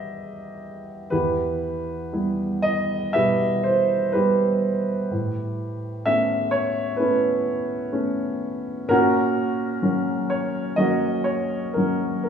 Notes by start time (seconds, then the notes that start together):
Already playing: E2 G3 E4 G4 D#5 E5 F#5
1.10 E2 E4 G4 B4
2.13 G3 B3 E4
2.62 D#5
3.13 B2 G3 E4 G4 B4 E5
3.63 C5
4.12 G3 B3 E4 G4 B4
5.11 A2
6.05 A3 B3 C#4 E5
6.51 C#5
6.96 A3 B3 C#4 E4 B4
7.92 A3 B3 C#4
8.88 A#2 C#4 F#4 A#4
9.82 F#3 A#3 C#4
10.30 C#5
10.76 F#3 A#3 C#4 F#4 A#4 D#5
11.24 C#5
11.74 F#3 A#3 C#4 A#4
12.23 A#4